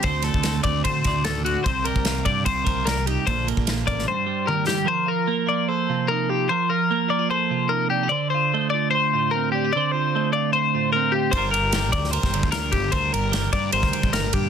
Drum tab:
RD |x-x-x-x-x-x-x-x-|x-x-x-x-x-x-x-x-|x-x-x-x---------|----------------|
SD |--o-o-----o-o---|----o-------o---|----o--o------o-|----------------|
T1 |----------------|----------------|------------o---|----------------|
BD |o--o--o-o-o-----|o--o--o-o-o-----|o--o--o---------|----------------|

RD |----------------|----------------|----------------|x-x-x-x-x-x-x-x-|
SD |----------------|----------------|----------------|----o--o-o--o---|
T1 |----------------|----------------|----------------|----------------|
BD |----------------|----------------|----------------|o-----o--o-o--o-|

RD |x-x-x-x-x-x-x-x-|
SD |----o----o--o---|
T1 |----------------|
BD |o-----o--o-o--o-|